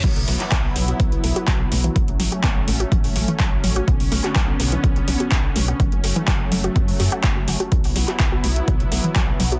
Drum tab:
CC |x---------------|----------------|----------------|----------------|
HH |xooxx-oxxxoxx-ox|xxoxx-oxxooxx-ox|xooxx-oxxxoxx-ox|xxoxx-oxxooxx-ox|
CP |---xx-------x---|----x-------x---|---xx-------x---|----x-------x---|
BD |o---o---o---o---|o---o---o---o---|o---o---o---o---|o---o---o---o---|

CC |----------------|
HH |xooxx-oxxxoxx-ox|
CP |---xx-------x---|
BD |o---o---o---o---|